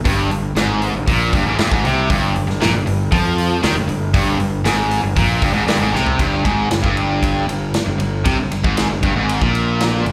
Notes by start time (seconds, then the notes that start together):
0.05 G1 G2, kick, open hi-hat
0.31 G1 G2, open hi-hat
0.56 G#1 G#2, snare, open hi-hat
0.82 open hi-hat
0.95 G1 G2
1.07 A#1 A#2, kick, open hi-hat
1.33 G1 G2, kick, open hi-hat
1.46 G#1 G#2
1.58 G1 G2, snare, open hi-hat
1.71 G#1 G#2, kick
1.84 C2 C3, open hi-hat
2.09 G1 G2, kick, open hi-hat
2.35 G1 G2, open hi-hat
2.47 G1 G2, snare
2.61 A#1 A#2, snare, open hi-hat
2.73 G1 G2
2.86 G1 G2, open hi-hat
3.12 F2 F3, kick, open hi-hat
3.38 open hi-hat
3.62 D#2 D#3, snare, open hi-hat
3.75 G1 G2
3.88 G1 G2, open hi-hat
4.14 G1 G2, kick, open hi-hat
4.39 G1 G2, open hi-hat
4.64 G#1 G#2, snare, open hi-hat
4.91 open hi-hat
5.03 G1 G2
5.16 A#1 A#2, kick, open hi-hat
5.42 G1 G2, kick, open hi-hat
5.53 G#1 G#2
5.67 G1 G2, snare, open hi-hat
5.79 G#1 G#2
5.92 C2 C3, snare
6.06 floor tom
6.19 G1 G2, kick, ride
6.44 G#1 G#2, kick, ride
6.70 G1 G2, snare, ride
6.83 G1 G2, kick
6.97 ride
7.23 kick, ride
7.48 G1 G2, ride
7.74 snare, ride
7.86 G1 G2
7.98 G1 G2, ride
8.25 C2 C3, kick, ride
8.37 G1 G2
8.51 G1 G2, ride
8.63 G#1 G#2, kick
8.77 snare, ride
8.90 G1 G2
9.03 G1 G2, kick, ride
9.16 G#1 G#2
9.29 ride
9.41 A#1 A#2, kick
9.55 ride
9.80 snare, ride
10.05 G1 G2, ride